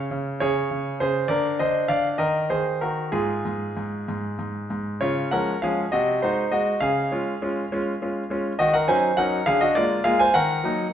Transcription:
grand piano
Already playing: C#5
0.11 C#3
0.40 C#3 G#4 C#5
0.71 C#3
1.00 C#3 G#4 C5
1.28 D3 A#4 D5
1.59 D3 C5 D#5
1.88 D3 D5 F5
2.18 D#3 A#4 D#5
2.50 D#3 G#4 C5
2.81 D#3 F#4 A#4
3.12 G#2 F4 G#4
3.45 G#2
3.77 G#2
4.08 G#2
4.39 G#2
4.70 G#2
5.01 C#3 F4 C#5
5.31 F3 G#3 C#4 A#4 F#5
5.62 F3 G#3 C#4 G#4 F5
5.92 C3 F#4 D#5
6.22 G#3 D#4 F#4 C5
6.52 G#3 F#4 D#5
6.81 C#3 G#4 F5
7.12 G#3 C#4 F4
7.42 G#3 C#4 F4
7.72 G#3 C#4 F4
8.02 G#3 C#4 F4
8.30 G#3 C#4 F4
8.59 D#3 F#4 D#5
8.74 A#4 F#5
8.88 F#3 C#4 D#4 C5 G#5
9.17 F#3 C#4 D#4 A#4 F#5
9.46 D3 G#4 F5
9.61 F#4 D#5
9.75 G#3 A#3 F4 D5
10.04 G#3 A#3 F4 G#4 F5
10.19 C5 G#5
10.34 D#3 A#4 F#5
10.64 F#3 A#3 D#4

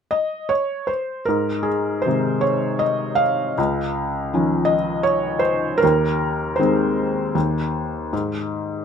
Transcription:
felt piano
0.11 D#5
0.49 C#5
0.87 C5
1.25 G#2 A#4
1.63 G#4
2.02 C5
2.06 C3 D#3 G#3
2.41 C#5
2.79 D#5
3.15 F5
3.58 C#2
4.33 D#3 F3 C#4
4.65 D#5
5.03 C#5
5.39 C5
5.78 A#4
5.83 D#2
6.56 D#3 G#3 C5
6.60 C4
7.35 D#2
8.13 G#2

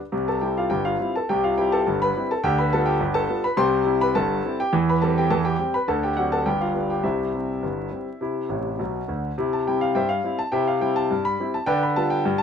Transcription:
grand piano
0.12 C2 C3
0.28 A4 A5
0.41 G3 C4 E4 G4 G5
0.58 F4 F5
0.70 G1 G2 G4 G5
0.85 F4 F5
1.00 G3 C4 E4
1.16 A4 A5
1.29 C2 C3 G4 G5
1.44 F4 F5
1.58 G3 C4 E4 G4 G5
1.72 A4 A5
1.87 G1 G2
2.02 B4 B5
2.16 G3 C4 E4
2.31 A4 A5
2.44 D2 D3 G4 G5
2.58 B4 B5
2.73 G3 B3 F4 A4 A5
2.86 G4 G5
3.00 G1 G2
3.14 A4 A5
3.29 G3 B3 F4
3.44 B4 B5
3.57 C2 C3 C5 G5 C6
3.85 G3 C4 E4
4.01 B4 B5
4.15 G1 G2 A4 A5
4.44 G3 C4 E4
4.60 G4 G5
4.73 E2 E3
4.89 B4 B5
5.02 G3 C4 G4 A4 A5
5.18 G4 G5
5.30 E2 E3 A4 A5
5.45 G4 G5
5.59 G3 C4 G4
5.74 B4 B5
5.88 D2 D3 A4 A5
6.03 G4 G5
6.17 F#3 C4 D4 F#4 F#5
6.32 A4 A5
6.46 G1 G2 G4 G5
6.61 F4 F5
6.75 G3 B3 D4
6.90 G4 G5
7.03 C2 C3 E4 C5 E5
7.34 G3 C4
7.63 G1 G2
7.91 G3 C4
8.21 C3 E4
8.49 A1 A2
8.79 B1 B2
9.08 D2 D3
9.38 C3 E4
9.53 A5
9.67 G3 C4 E4 G5
9.81 F5
9.95 G2 C5 E5 G5
10.09 F5
10.24 G3 C4 E4
10.39 A5
10.52 C3 E4 C5 E5 G5
10.68 F5
10.81 G3 C4 E4 G5
10.96 A5
11.11 G2
11.25 B5
11.40 G3 C4 E4
11.54 A5
11.66 D3 B4 D5 G5
11.83 B5
11.96 G3 B3 F4 A5
12.10 G5
12.25 G2
12.38 A5

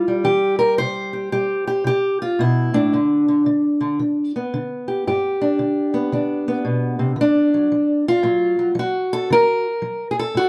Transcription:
steel-string acoustic guitar
Already playing: G2 F4
0.08 G3
0.24 E3 G4
0.59 A#4
0.78 C3 C5
1.13 G4
1.32 G3 G4
1.67 G4
1.84 C3 G4
2.22 F4
2.39 B2 E4
2.74 A2 D4
2.93 G2 D3
3.28 D3
3.46 D3
3.81 D3
3.99 D3
4.36 B3
4.54 D3
4.88 G4
5.07 G2 G4
5.41 D4
5.59 D3
5.94 B3
6.12 D3 D4
6.48 B3
6.65 B2
6.99 C3
7.16 D3
7.21 D4
7.54 F#3
7.72 F#3
8.08 F4
8.23 A2 F#3
8.59 F#3
8.75 F#3
8.79 F#4
9.13 A4
9.30 D3 A#4
9.82 F#3
10.11 G#4
10.19 A4
10.35 A2 F#4

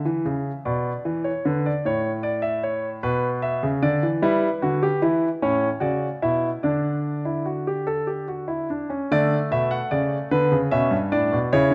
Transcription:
grand piano
Already playing: E5
0.05 E3
0.25 C#3
0.65 B2 D5
1.05 E3
1.24 C#5
1.45 D3 B4
1.66 D5
1.85 A2 C#5
2.23 D5
2.42 E5
2.63 C#5
3.03 B2 B4
3.42 E5
3.63 C#3
3.83 D3 D5
4.03 E3
4.22 G3 E4 B4
4.62 D3 F#4
4.83 G4
5.02 E3 E4
5.42 A2 C#4 C#5
5.80 C#3 F#4 D5
6.22 B2 E4 E5
6.63 D3 D4 D5
7.25 E4
7.46 F#4
7.67 G4
7.87 A4
8.07 G4
8.28 F#4
8.48 E4
8.70 D4
8.90 C#4
9.11 D3 A3 D5
9.51 B2 E5
9.71 F#5
9.91 C#3 D5
10.31 D3 B3 B4
10.52 C#3
10.71 B2 C#4 E5
10.91 G2
11.12 A2 D4 D5
11.32 B2
11.53 C#3 E4 C#5
11.71 D3

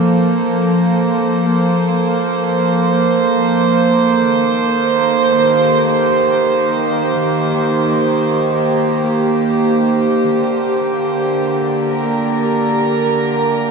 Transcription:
string section
Already playing: F3 A#3 A4 C5
4.21 D#3
5.42 G4
10.32 D3
11.81 A#4

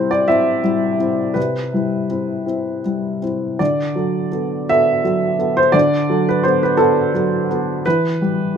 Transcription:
upright piano
Already playing: C3 G3 C4 E4 C5
0.11 D5
0.28 C4 E4 E5
0.63 G3 E4
1.00 C4 E4
1.34 C3 B4
1.73 G3 E4
2.10 C4 E4
2.46 C4 E4
2.85 G3 E4
3.22 C4 E4
3.59 D3 D5
3.95 F#3 A4
4.32 B3 A4
4.69 B3 A4 E5
5.04 F#3 A4
5.39 B3 A4
5.57 C5
5.72 D3 D5
6.09 F#3 A4
6.29 B4
6.43 B3 A4 C5
6.63 B4
6.77 B3 A4
7.13 F#3 A4
7.49 B3 A4
7.86 E3 B4
8.21 G3 G4

